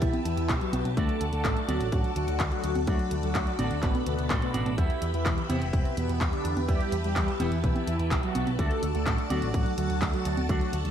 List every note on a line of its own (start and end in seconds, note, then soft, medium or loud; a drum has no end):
0.00 0.12 B1 loud
0.00 0.20 E3 medium
0.00 0.94 B3 medium
0.00 0.94 E4 medium
0.00 0.20 E4 loud
0.00 0.93 G4 medium
0.00 0.94 G4 medium
0.00 0.93 B4 medium
0.00 0.93 E5 medium
0.00 0.94 E5 loud
0.00 2.84 A5 medium
0.00 kick loud
0.00 closed hi-hat medium
0.13 closed hi-hat soft
0.13 high conga medium
0.25 0.36 E2 medium
0.25 0.53 E3 medium
0.25 0.53 E4 loud
0.25 closed hi-hat loud
0.37 0.47 E2 medium
0.37 closed hi-hat soft
0.49 0.60 B1 loud
0.49 kick loud
0.49 clap loud
0.49 closed hi-hat medium
0.61 0.89 F#3 medium
0.61 0.89 F#4 loud
0.61 closed hi-hat soft
0.73 0.83 B1 loud
0.73 closed hi-hat loud
0.73 high conga medium
0.85 0.95 B1 medium
0.85 closed hi-hat soft
0.85 high conga medium
0.97 1.07 D2 loud
0.97 1.25 A3 medium
0.97 1.66 A3 medium
0.97 1.66 D4 medium
0.97 4.74 F#4 medium
0.97 1.66 F#4 medium
0.97 1.25 A4 loud
0.97 4.74 A4 medium
0.97 4.74 D5 medium
0.97 1.66 D5 medium
0.97 kick loud
0.97 closed hi-hat medium
1.09 closed hi-hat soft
1.21 1.31 D2 medium
1.21 closed hi-hat medium
1.33 1.43 D2 medium
1.33 1.61 A3 medium
1.33 1.60 A4 loud
1.33 closed hi-hat soft
1.45 1.55 A1 loud
1.45 kick loud
1.45 clap loud
1.45 closed hi-hat medium
1.57 closed hi-hat soft
1.68 1.79 D2 medium
1.68 1.87 F#3 medium
1.68 2.85 A3 medium
1.68 2.85 D4 medium
1.68 1.87 F#4 medium
1.68 2.85 F#4 medium
1.68 2.85 D5 loud
1.68 closed hi-hat loud
1.68 high conga medium
1.80 1.91 A1 medium
1.80 closed hi-hat soft
1.92 2.02 A1 loud
1.92 2.11 F#3 medium
1.92 2.11 F#4 medium
1.92 kick loud
1.92 closed hi-hat medium
2.04 closed hi-hat soft
2.16 2.26 D2 medium
2.16 2.44 F#3 medium
2.16 2.44 F#4 loud
2.16 closed hi-hat medium
2.28 2.38 D2 medium
2.28 closed hi-hat soft
2.40 2.50 D2 loud
2.40 kick loud
2.40 clap loud
2.40 closed hi-hat medium
2.52 2.80 F#3 medium
2.52 2.80 F#4 loud
2.52 closed hi-hat soft
2.64 2.74 D2 loud
2.64 closed hi-hat loud
2.75 2.86 D2 medium
2.75 closed hi-hat soft
2.75 high conga medium
2.87 2.98 D2 loud
2.87 3.15 F#3 medium
2.87 3.56 A3 medium
2.87 3.56 D4 medium
2.87 3.15 F#4 loud
2.87 3.56 F#4 medium
2.87 3.56 D5 medium
2.87 6.65 B5 medium
2.87 kick loud
2.87 closed hi-hat medium
2.99 closed hi-hat soft
3.11 3.21 D2 medium
3.11 closed hi-hat medium
3.23 3.33 D2 medium
3.23 3.51 F#3 medium
3.23 3.51 F#4 loud
3.23 closed hi-hat soft
3.35 3.45 D2 medium
3.35 kick loud
3.35 clap loud
3.35 closed hi-hat medium
3.47 closed hi-hat soft
3.59 3.69 A1 medium
3.59 3.77 D3 medium
3.59 4.28 A3 medium
3.59 3.77 D4 medium
3.59 4.28 D4 medium
3.59 4.28 F#4 medium
3.59 4.28 D5 loud
3.59 closed hi-hat medium
3.59 high conga medium
3.71 3.81 D2 medium
3.71 closed hi-hat soft
3.83 3.93 A1 loud
3.83 4.01 B2 medium
3.83 4.01 B3 medium
3.83 kick loud
3.83 clap medium
3.83 closed hi-hat medium
3.95 closed hi-hat soft
3.95 high conga medium
4.06 4.17 D2 medium
4.06 4.34 B2 medium
4.06 4.34 B3 loud
4.06 closed hi-hat medium
4.18 4.29 D2 medium
4.18 closed hi-hat soft
4.30 4.41 A1 loud
4.30 4.51 A3 medium
4.30 4.51 D4 medium
4.30 4.51 F#4 medium
4.30 4.51 C5 medium
4.30 kick loud
4.30 clap loud
4.30 closed hi-hat medium
4.42 4.70 B2 medium
4.42 4.70 B3 loud
4.42 closed hi-hat soft
4.54 4.64 A1 medium
4.54 4.75 A3 medium
4.54 4.75 D4 medium
4.54 4.75 F#4 medium
4.54 4.75 D5 medium
4.54 closed hi-hat medium
4.54 high conga medium
4.66 4.76 A1 medium
4.66 closed hi-hat soft
4.66 high conga medium
4.78 4.88 E2 loud
4.78 5.06 E3 medium
4.78 5.47 B3 medium
4.78 5.47 E4 medium
4.78 5.06 E4 loud
4.78 8.55 G4 medium
4.78 5.47 G4 medium
4.78 8.55 B4 medium
4.78 8.55 E5 medium
4.78 5.47 E5 medium
4.78 kick loud
4.78 closed hi-hat medium
4.90 closed hi-hat soft
5.02 5.12 E2 medium
5.02 closed hi-hat medium
5.13 5.24 E2 medium
5.13 5.41 E3 medium
5.13 5.41 E4 loud
5.13 closed hi-hat soft
5.26 5.36 E1 loud
5.26 kick loud
5.26 clap loud
5.26 closed hi-hat medium
5.38 closed hi-hat soft
5.49 5.60 E2 medium
5.49 5.68 C3 medium
5.49 6.66 B3 medium
5.49 5.68 C4 medium
5.49 6.66 E4 medium
5.49 6.66 G4 medium
5.49 6.66 E5 loud
5.49 closed hi-hat loud
5.49 high conga medium
5.61 5.72 E1 medium
5.61 closed hi-hat soft
5.73 5.83 E1 loud
5.73 5.92 C3 medium
5.73 5.92 C4 medium
5.73 kick loud
5.73 closed hi-hat medium
5.85 closed hi-hat soft
5.97 6.07 E2 loud
5.97 6.25 B2 medium
5.97 6.25 B3 medium
5.97 closed hi-hat medium
6.09 6.19 E2 medium
6.09 closed hi-hat soft
6.21 6.31 E2 loud
6.21 kick loud
6.21 clap loud
6.21 closed hi-hat medium
6.33 6.61 D3 medium
6.33 6.61 D4 loud
6.33 closed hi-hat soft
6.45 6.55 E2 loud
6.45 closed hi-hat medium
6.56 6.67 E2 medium
6.56 closed hi-hat soft
6.56 high conga medium
6.68 6.79 E2 loud
6.68 6.96 G3 medium
6.68 7.37 B3 medium
6.68 7.37 E4 medium
6.68 7.37 G4 medium
6.68 6.96 G4 loud
6.68 7.37 E5 medium
6.68 10.91 A5 medium
6.68 kick loud
6.68 closed hi-hat medium
6.81 closed hi-hat soft
6.92 7.02 E2 medium
6.92 closed hi-hat medium
7.04 7.14 E2 medium
7.04 7.32 G3 medium
7.04 7.32 G4 loud
7.04 closed hi-hat soft
7.16 7.26 E2 loud
7.16 kick loud
7.16 clap loud
7.16 closed hi-hat medium
7.28 closed hi-hat soft
7.40 7.50 E1 medium
7.40 7.59 E3 medium
7.40 8.56 B3 medium
7.40 7.59 E4 medium
7.40 8.56 E4 medium
7.40 8.56 G4 medium
7.40 8.56 E5 loud
7.40 closed hi-hat medium
7.40 high conga medium
7.51 7.62 E2 medium
7.51 closed hi-hat soft
7.64 7.74 B1 loud
7.64 7.82 E3 medium
7.64 7.82 E4 medium
7.64 kick loud
7.64 closed hi-hat medium
7.76 closed hi-hat soft
7.76 high conga medium
7.87 7.98 E2 loud
7.87 8.15 E3 medium
7.87 8.15 E4 loud
7.87 closed hi-hat medium
7.99 8.09 E2 medium
7.99 closed hi-hat soft
8.11 8.21 B1 loud
8.11 kick loud
8.11 clap loud
8.11 closed hi-hat medium
8.23 8.51 F#3 medium
8.23 8.51 F#4 loud
8.23 closed hi-hat soft
8.35 8.45 B1 loud
8.35 closed hi-hat medium
8.35 high conga medium
8.47 8.57 B1 medium
8.47 closed hi-hat soft
8.47 high conga medium
8.58 8.69 D2 loud
8.58 9.28 A3 medium
8.58 8.87 A3 medium
8.58 9.28 D4 medium
8.58 10.91 F#4 medium
8.58 9.28 F#4 medium
8.58 8.87 A4 loud
8.58 10.91 A4 medium
8.58 10.48 D5 medium
8.58 9.28 D5 medium
8.58 kick loud
8.58 closed hi-hat medium
8.71 closed hi-hat soft
8.83 8.93 D2 medium
8.83 closed hi-hat medium
8.95 9.05 D2 medium
8.95 9.23 A3 medium
8.95 9.23 A4 loud
8.95 closed hi-hat soft
9.06 9.17 A1 loud
9.06 kick loud
9.06 clap loud
9.06 closed hi-hat medium
9.18 closed hi-hat soft
9.30 9.40 D2 medium
9.30 9.49 F#3 medium
9.30 10.47 A3 medium
9.30 10.47 D4 medium
9.30 10.47 F#4 medium
9.30 9.49 F#4 medium
9.30 10.47 D5 loud
9.30 closed hi-hat medium
9.30 high conga medium
9.42 9.52 A1 medium
9.42 closed hi-hat soft
9.54 9.64 A1 loud
9.54 9.73 F#3 medium
9.54 9.73 F#4 medium
9.54 kick loud
9.54 closed hi-hat medium
9.66 closed hi-hat soft
9.78 9.88 D2 medium
9.78 10.06 F#3 medium
9.78 10.06 F#4 loud
9.78 closed hi-hat medium
9.90 10.00 D2 medium
9.90 closed hi-hat soft
10.02 10.12 D2 loud
10.02 kick loud
10.02 clap loud
10.02 closed hi-hat medium
10.14 10.42 F#3 medium
10.14 10.41 F#4 loud
10.14 closed hi-hat soft
10.25 10.36 D2 loud
10.25 closed hi-hat medium
10.37 10.48 D2 medium
10.37 closed hi-hat soft
10.37 high conga medium
10.49 10.60 D2 loud
10.49 10.77 F#3 medium
10.49 10.91 A3 medium
10.49 10.91 D4 medium
10.49 10.77 F#4 loud
10.49 10.91 F#4 medium
10.49 10.91 D5 medium
10.49 10.91 E5 medium
10.49 kick loud
10.49 closed hi-hat medium
10.61 closed hi-hat soft
10.73 10.83 D2 medium
10.73 closed hi-hat medium
10.85 10.91 D2 medium
10.85 10.91 F#3 medium
10.85 10.91 F#4 loud
10.85 closed hi-hat soft